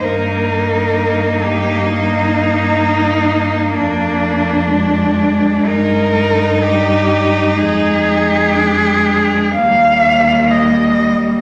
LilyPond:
<<
  \new Staff \with { instrumentName = "Cello" } { \time 4/4 \key ees \major \tempo 4 = 63 bes'4. g'8 ees'2 | d'2 bes'4 g'4 | aes'2 f''4 ees''4 | }
  \new Staff \with { instrumentName = "Cello" } { \time 4/4 \key ees \major ees'1 | d'2 ees'2~ | ees'4 d'4 bes2 | }
  \new Staff \with { instrumentName = "Cello" } { \clef bass \time 4/4 \key ees \major bes1~ | bes4 aes2 g4 | aes2 g2 | }
  \new Staff \with { instrumentName = "Cello" } { \clef bass \time 4/4 \key ees \major g,1 | f,2 g,2 | f,2 ees,2 | }
>>